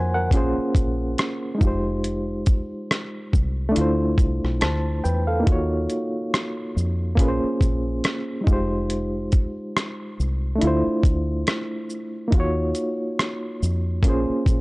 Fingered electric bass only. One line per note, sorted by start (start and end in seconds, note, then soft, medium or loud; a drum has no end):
0.00 0.29 F2 medium
0.32 0.54 A#1 loud
0.75 1.14 A#1 medium
1.61 2.43 F1 medium
3.34 3.72 C2 medium
3.77 4.15 D2 medium
4.18 4.40 C2 medium
4.44 4.60 B1 medium
4.62 5.01 D2 medium
5.05 5.43 E2 medium
5.48 5.86 D#2 medium
6.76 7.15 F2 medium
7.18 7.40 A#1 loud
7.44 muted fingered electric bass stroke soft
7.61 8.00 A#1 medium
8.48 9.29 F1 medium
10.20 10.58 C2 medium
10.63 10.84 D2 medium
10.87 muted fingered electric bass stroke soft
11.04 11.43 D2 medium
12.33 12.72 D#2 loud
13.62 14.01 F2 medium
14.03 14.26 A#1 medium
14.30 muted fingered electric bass stroke soft
14.47 14.61 A#1 medium